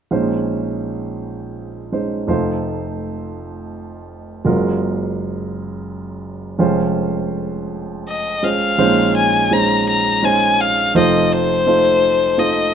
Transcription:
0.11 grand piano A#1 A#2 G#3 C#4 D#4 C5
1.92 grand piano G#3 C#4 D#4 C5
2.28 grand piano F1 F2 A3 D#4 F4 C5
4.45 grand piano F#1 F#2 G#3 F4 F#4 A#4
6.59 grand piano F1 F2 G#3 C#4 F4 C5
8.08 violin D#5
8.43 grand piano G#3 C#4 F4 C5, violin F5
8.78 grand piano A#1 A#2 G#3 C#4 D#4 C5
9.17 violin G#5
9.51 grand piano G#3 C#4 D#4 C5, violin A#5
9.89 violin A#5
10.23 grand piano G#3 C#4 D#4 C5, violin G#5
10.61 violin F5
10.95 grand piano F1 F2 A3 D#4 F4 C5, violin D#5
11.33 violin C5
11.67 grand piano A3 D#4 F4 C5
12.38 grand piano A3 D#4 F4 C5, violin D#5

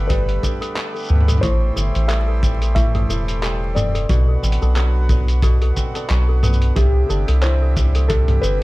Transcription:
Already playing: analog synth bass G1, harmonium D3 A3 G4 B4, kora B3 D4
0.07 kora G3, toy piano A4, felt piano B4, kick, closed hi-hat, shaker
0.29 closed hi-hat
0.43 kora D4, toy piano A4, kick, shaker
0.61 toy piano A4, closed hi-hat, shaker
0.76 kora B3, clap, closed hi-hat
0.95 toy piano A4, shaker
0.98 shaker
1.00 shaker
1.02 shaker
1.04 shaker
1.06 shaker
1.08 analog synth bass D2, kora B3, mid tom, shaker
1.16 mid tom
1.21 mid tom
1.28 toy piano A4, closed hi-hat, mid tom, shaker
1.32 mid tom
1.38 felt piano C5, mid tom
1.43 analog synth bass A1, kora A2, toy piano A4, harmonium C5, kick, closed hi-hat, shaker
1.76 analog synth bass G1, kora E4, toy piano A4, shaker
1.95 analog synth bass A1, closed hi-hat, shaker
2.08 kora G3, toy piano A4, felt piano E5, clap, closed hi-hat, shaker
2.28 toy piano A4
2.43 kora C4, kick, shaker
2.62 toy piano A4, closed hi-hat, shaker
2.75 kora A2, felt piano E5, kick, closed hi-hat, shaker
2.95 toy piano A4, closed hi-hat, mid tom
3.10 analog synth bass E1, kora E4, toy piano A4, shaker
3.28 closed hi-hat, shaker
3.43 kora G3, toy piano A4, clap, closed hi-hat, shaker
3.75 kora C4, toy piano A4, felt piano D5, mid tom, shaker
3.95 toy piano A4, closed hi-hat, shaker
4.09 analog synth bass B1, kora B2, harmonium D3 F#4 B4, kick, closed hi-hat, shaker
4.28 toy piano A4
4.43 analog synth bass A1, kora C4, shaker
4.52 closed hi-hat
4.62 analog synth bass B1, kora D4, toy piano A4, shaker
4.76 kora F#3, toy piano A4, clap, closed hi-hat, shaker
5.09 kora B3, toy piano A4, kick, shaker
5.28 closed hi-hat, shaker
5.42 kora B2, toy piano A4, kick, closed hi-hat, shaker
5.62 toy piano A4, closed hi-hat
5.76 kora C4, kick, shaker
5.95 kora D4, toy piano A4, closed hi-hat, shaker
6.10 analog synth bass B1, kora F#3, clap, closed hi-hat, shaker
6.29 toy piano A4
6.43 kora B3, toy piano A4, mid tom, shaker
6.53 shaker
6.62 closed hi-hat
6.76 analog synth bass C2, kora C3, harmonium C4 E4 G4, felt piano G4, toy piano A4, kick, closed hi-hat, shaker
7.09 analog synth bass G1, kora D4, toy piano A4, shaker
7.28 analog synth bass C2, toy piano A4, closed hi-hat
7.42 kora E3, felt piano C5, clap, closed hi-hat, shaker
7.62 toy piano A4
7.76 kora G3, kick, shaker
7.95 toy piano A4, closed hi-hat, shaker
8.08 kora C3, felt piano A4, toy piano A4, kick, closed hi-hat, shaker
8.28 closed hi-hat, mid tom
8.41 analog synth bass G1, kora C4, toy piano A4, felt piano B4, shaker

